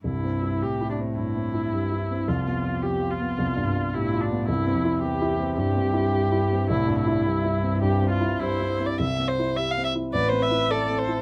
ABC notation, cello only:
X:1
M:4/4
L:1/8
Q:1/4=107
K:C
V:1 name="Cello" clef=bass
G,,2 A,,4 G,,2 | F,,4 F,, G,, A,,2 | G,, F,, E,,2 G,, G,,3 | A,,2 G,,4 G,, z |
z4 B2 A2 |]